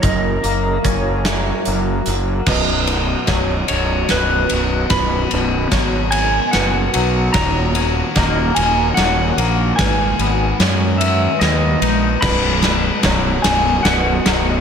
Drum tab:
CC |------|x-----|------|------|
RD |------|-xxxxx|xxxxxx|xxxxxx|
HH |xxxxxx|------|------|------|
SD |---o--|o-o-o-|o-o-o-|o-o-o-|
BD |o-o---|o-o---|o-o---|o-o---|

CC |------|x-----|
RD |xxxxxx|-xxxxx|
HH |------|------|
SD |o-o-o-|oooooo|
BD |o-----|o-o---|